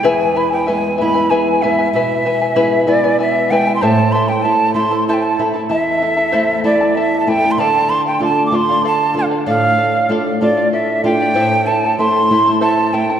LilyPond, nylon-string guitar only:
\new Staff \with { instrumentName = "Nylon-string guitar" } { \time 6/8 \key e \phrygian \tempo 4. = 64 e,4 <gis b e'>8 <gis b e'>4 <gis b e'>8 | b,4 <gis b e'>8 <gis b e'>4 <gis b e'>8 | a,4 <a c' e'>8 <a c' e'>4 <a c' e'>8 | e,4 <a c' e'>8 <a c' e'>4 <a c' e'>8 |
d4 <a d' f'>8 <a d' f'>4 <a d' f'>8 | a,4 <a d' f'>8 <a d' f'>4 <a d' f'>8 | a,4 <a c' e'>8 <a c' e'>4 <a c' e'>8 | }